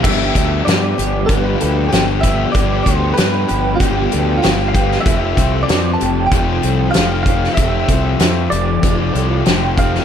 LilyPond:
<<
  \new Staff \with { instrumentName = "Clean electric guitar" } { \time 4/4 \key g \mixolydian \tempo 4 = 95 e''4 d''4 b'4 g'8 e''8 | d''8 c''8 b'4 g'4 f'8 f''8 | e''4 d''8 a''8 g''4 f''8 f''8 | e''4. d''4. r8 f''8 | }
  \new Staff \with { instrumentName = "Twelve-string acoustic guitar" } { \time 4/4 \key g \mixolydian g'8 a'8 b'8 g'8 f'8 a'8 g'4 | g'8 a'8 b'8 g'8 f'8 a'8 g'4 | g'8 a'8 b'8 g'8 f'8 a'8 g'4 | g'8 a'8 b'8 g'8 f'8 a'8 g'4 | }
  \new Staff \with { instrumentName = "Clean electric guitar" } { \time 4/4 \key g \mixolydian <g, d f g b g'>4 <f g b g'>4 <g, d f g b g'>8 <f g b g'>4 <f g b g'>8 | <g, d f g b g'>4 <f g b g'>4 <g, d f g b g'>8 <f g b g'>4 <f g b g'>8 | <f c' a'>4 <f c' a'>4 <f c' a'>8 <c' a'>4 <c' a'>8 | <f c' a'>4 <f c' a'>4 <f c' a'>8 <c' a'>4 <c' e' a'>8 | }
  \new Staff \with { instrumentName = "Overdriven electric guitar" } { \time 4/4 \key g \mixolydian <g, d f b d' g'>8 <f b d' g'>4. <g, d f b d' g'>4 <f b d' g'>8 <f b d' g'>8 | <g, d f b d' g'>8 <f b d' g'>4. <g, d f b d' g'>4 <f b d' g'>8 <f b d' g'>8 | <f, c f a c' f'>8 <f a c' f'>4. <f, c f a c' f'>4 <f a c' f'>8 <f a c' f'>8 | <f, c f a c' f'>8 <f a c' f'>4. <f, c f a c' f'>4 <f a c' f'>8 <f a c' f'>8 | }
  \new Staff \with { instrumentName = "Fingered electric bass" } { \clef bass \time 4/4 \key g \mixolydian g,,8 d,8 g,8 g,,8 g,,8 d,8 g,,4 | g,,8 d,8 g,8 g,,8 g,,8 d,8 g,,4 | f,,8 c,8 f,8 f,,8 f,,8 c,8 f,,4 | f,,8 c,8 f,8 f,,8 f,,8 c,8 f,,4 | }
  \new DrumStaff \with { instrumentName = "Drums" } \drummode { \time 4/4 <cymc bd>8 <hh bd>8 <hh sn>8 hh8 <hh bd>8 hh8 <hh sn>8 <hh bd>8 | <hh bd>8 <hh bd>8 <hh sn>8 hh8 <hh bd>8 hh8 <hh sn>8 <hh bd>16 sn16 | <hh bd>8 <hh bd>8 <hh sn>8 hh8 <hh bd>8 hh8 <hh sn>8 <hh bd>16 sn16 | <hh bd>8 <hh bd>8 <hh sn>8 hh8 <hh bd>8 hh8 <hh sn>8 <hh bd>16 sn16 | }
>>